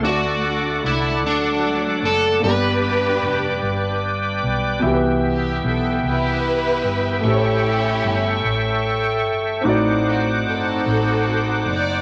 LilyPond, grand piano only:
<<
  \new Staff \with { instrumentName = "Grand piano" } { \time 6/8 \key c \major \tempo 4. = 50 <a d' fis' d''>2. | <bes b d' g' d''>2. | <b, e' g' b'>2. | <a e' g' c'' cis''>2. |
<c' ees' fis' d''>2. | }
  \new Staff \with { instrumentName = "Grand piano" } { \clef bass \time 6/8 \key c \major d4. r4. | g,4. r4. | e4. r4. | a,4. r4. |
a,4. r4. | }
>>